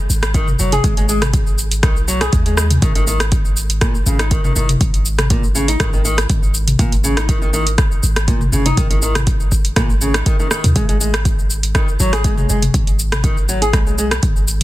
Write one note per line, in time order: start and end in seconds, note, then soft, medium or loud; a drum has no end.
0.10 0.56 G#1 medium
0.10 shaker medium
0.23 cross-stick loud
0.23 closed hi-hat soft
0.23 shaker soft
0.34 0.47 D#3 medium
0.34 kick loud
0.34 closed hi-hat medium
0.34 shaker medium
0.48 mid tom medium
0.48 shaker soft
0.59 0.80 F#1 medium
0.59 0.71 F#3 medium
0.59 shaker medium
0.72 0.84 G#4 medium
0.72 closed hi-hat soft
0.72 mid tom medium
0.72 shaker soft
0.84 1.85 G#1 medium
0.84 0.96 G#3 medium
0.84 kick loud
0.84 closed hi-hat medium
0.84 shaker medium
0.97 1.07 G#3 medium
0.97 closed hi-hat soft
0.97 shaker soft
1.09 1.21 G#3 medium
1.09 shaker medium
1.22 cross-stick medium
1.22 closed hi-hat soft
1.22 mid tom medium
1.22 shaker soft
1.33 kick loud
1.33 closed hi-hat medium
1.33 shaker medium
1.47 shaker soft
1.58 shaker medium
1.71 closed hi-hat soft
1.71 shaker soft
1.83 2.29 B1 medium
1.83 1.95 D#3 medium
1.83 kick loud
1.83 cross-stick medium
1.83 closed hi-hat soft
1.83 shaker medium
1.97 shaker soft
2.08 2.20 F#3 medium
2.08 shaker medium
2.21 2.32 G#4 medium
2.21 cross-stick medium
2.21 closed hi-hat soft
2.21 shaker soft
2.33 2.79 D#2 medium
2.33 2.45 G#3 medium
2.33 kick loud
2.33 closed hi-hat medium
2.33 shaker medium
2.46 2.56 G#3 medium
2.46 closed hi-hat soft
2.46 shaker soft
2.57 2.69 G#3 medium
2.57 cross-stick medium
2.57 shaker medium
2.70 closed hi-hat soft
2.70 mid tom medium
2.70 shaker soft
2.82 4.03 G#1 medium
2.82 2.94 D#3 medium
2.82 kick loud
2.82 closed hi-hat medium
2.82 shaker soft
2.95 3.06 D#3 medium
2.95 closed hi-hat soft
2.95 shaker soft
3.07 3.19 D#3 medium
3.07 shaker medium
3.20 cross-stick medium
3.20 closed hi-hat soft
3.20 shaker soft
3.32 kick loud
3.32 closed hi-hat medium
3.32 shaker soft
3.45 shaker soft
3.57 shaker medium
3.70 closed hi-hat soft
3.70 shaker soft
3.81 3.93 A#2 medium
3.81 kick loud
3.81 cross-stick medium
3.81 closed hi-hat medium
3.81 shaker soft
3.95 shaker soft
4.06 4.52 G#1 medium
4.06 4.18 C#3 medium
4.06 shaker medium
4.19 4.31 D#4 medium
4.19 cross-stick medium
4.19 closed hi-hat soft
4.19 shaker soft
4.31 4.43 D#3 medium
4.31 kick loud
4.31 closed hi-hat medium
4.31 shaker medium
4.44 4.55 D#3 medium
4.44 mid tom medium
4.44 shaker soft
4.56 4.76 F#1 medium
4.56 4.68 D#3 medium
4.56 shaker medium
4.69 closed hi-hat soft
4.69 mid tom medium
4.69 shaker soft
4.81 5.77 G#1 loud
4.81 kick loud
4.81 closed hi-hat medium
4.81 shaker soft
4.94 closed hi-hat soft
4.94 shaker soft
5.06 shaker medium
5.19 cross-stick medium
5.19 closed hi-hat soft
5.19 mid tom medium
5.19 shaker soft
5.30 5.42 A#2 medium
5.30 kick loud
5.30 closed hi-hat medium
5.30 shaker soft
5.44 shaker soft
5.55 5.67 C#3 medium
5.55 shaker medium
5.68 5.79 D#4 medium
5.68 closed hi-hat soft
5.68 shaker soft
5.80 6.26 G#1 medium
5.80 5.92 D#3 medium
5.80 kick loud
5.80 cross-stick medium
5.80 closed hi-hat medium
5.80 shaker soft
5.93 6.03 D#3 medium
5.93 shaker soft
6.05 6.17 D#3 medium
6.05 shaker medium
6.18 cross-stick medium
6.18 closed hi-hat soft
6.18 shaker soft
6.30 6.76 G#1 medium
6.30 kick loud
6.30 closed hi-hat medium
6.30 shaker soft
6.43 shaker soft
6.54 shaker medium
6.68 closed hi-hat soft
6.68 mid tom medium
6.68 shaker soft
6.79 8.00 G#1 loud
6.79 6.91 A#2 medium
6.79 kick loud
6.79 closed hi-hat medium
6.79 shaker soft
6.92 closed hi-hat soft
6.92 shaker soft
7.04 7.16 C#3 medium
7.04 shaker medium
7.17 7.28 D#4 medium
7.17 cross-stick medium
7.17 closed hi-hat soft
7.17 shaker soft
7.29 7.41 D#3 medium
7.29 kick loud
7.29 closed hi-hat medium
7.29 shaker soft
7.42 7.52 D#3 medium
7.42 shaker soft
7.53 7.65 D#3 medium
7.53 shaker medium
7.67 closed hi-hat soft
7.67 shaker soft
7.78 kick loud
7.78 cross-stick medium
7.78 closed hi-hat medium
7.78 shaker soft
7.92 shaker soft
8.03 8.49 G#1 medium
8.03 shaker medium
8.16 cross-stick medium
8.16 closed hi-hat soft
8.16 shaker soft
8.28 8.40 A#2 medium
8.28 kick loud
8.28 closed hi-hat medium
8.28 shaker soft
8.41 mid tom medium
8.41 shaker soft
8.52 8.73 F#1 medium
8.52 8.64 C#3 medium
8.52 shaker medium
8.66 8.77 D#4 medium
8.66 closed hi-hat soft
8.66 mid tom medium
8.66 shaker soft
8.77 9.73 G#1 loud
8.77 8.89 D#3 medium
8.77 kick loud
8.77 closed hi-hat medium
8.77 shaker soft
8.90 9.01 D#3 medium
8.90 closed hi-hat soft
8.90 shaker soft
9.02 9.14 D#3 medium
9.02 shaker medium
9.15 cross-stick medium
9.15 closed hi-hat soft
9.15 mid tom medium
9.15 shaker soft
9.27 kick loud
9.27 closed hi-hat medium
9.27 shaker soft
9.40 shaker soft
9.52 kick medium
9.52 shaker medium
9.65 closed hi-hat soft
9.65 shaker soft
9.76 10.23 G#1 medium
9.76 9.88 A#2 medium
9.76 kick loud
9.76 cross-stick medium
9.76 closed hi-hat medium
9.76 shaker soft
9.90 shaker soft
10.01 10.13 C#3 medium
10.01 shaker medium
10.14 10.26 D#4 medium
10.14 cross-stick medium
10.14 closed hi-hat soft
10.14 shaker soft
10.26 10.38 D#3 medium
10.26 kick loud
10.26 closed hi-hat medium
10.26 shaker soft
10.40 10.50 D#3 medium
10.40 shaker soft
10.51 10.63 D#3 medium
10.51 cross-stick medium
10.51 shaker medium
10.64 10.74 D#2 loud
10.64 closed hi-hat soft
10.64 mid tom medium
10.64 shaker soft
10.76 11.96 G#1 medium
10.76 10.88 G#3 medium
10.76 kick loud
10.76 closed hi-hat medium
10.76 shaker medium
10.89 10.99 G#3 medium
10.89 closed hi-hat soft
10.89 shaker soft
11.01 11.13 G#3 medium
11.01 shaker medium
11.14 cross-stick loud
11.14 closed hi-hat soft
11.14 shaker soft
11.25 kick loud
11.25 closed hi-hat medium
11.25 shaker medium
11.39 shaker soft
11.50 shaker medium
11.63 closed hi-hat soft
11.63 shaker soft
11.75 11.87 D#3 medium
11.75 kick loud
11.75 cross-stick medium
11.75 closed hi-hat medium
11.75 shaker medium
11.88 shaker soft
12.00 12.46 G#1 medium
12.00 12.12 F#3 medium
12.00 shaker medium
12.13 12.24 G#4 medium
12.13 cross-stick medium
12.13 closed hi-hat soft
12.13 shaker soft
12.24 12.37 G#3 medium
12.24 kick loud
12.24 closed hi-hat medium
12.24 shaker medium
12.38 12.48 G#3 medium
12.38 mid tom medium
12.38 shaker soft
12.49 12.70 F#1 medium
12.49 12.61 G#3 medium
12.49 shaker medium
12.62 closed hi-hat soft
12.62 mid tom medium
12.62 shaker soft
12.74 13.75 G#1 medium
12.74 kick loud
12.74 closed hi-hat medium
12.74 shaker medium
12.87 closed hi-hat soft
12.87 shaker soft
12.99 shaker medium
13.12 cross-stick loud
13.12 closed hi-hat soft
13.12 mid tom medium
13.12 shaker soft
13.24 13.36 D#3 medium
13.24 kick loud
13.24 closed hi-hat medium
13.24 shaker medium
13.37 shaker soft
13.49 13.61 F#3 medium
13.49 shaker medium
13.62 13.73 G#4 medium
13.62 closed hi-hat soft
13.62 shaker soft
13.73 14.20 B1 medium
13.73 13.85 G#3 medium
13.73 kick loud
13.73 cross-stick medium
13.73 closed hi-hat soft
13.73 shaker soft
13.87 13.97 G#3 medium
13.87 shaker soft
13.98 14.10 G#3 medium
13.98 shaker medium
14.11 cross-stick loud
14.11 closed hi-hat soft
14.11 shaker soft
14.23 14.63 G#1 loud
14.23 kick loud
14.23 closed hi-hat medium
14.23 shaker medium
14.36 shaker soft
14.48 shaker medium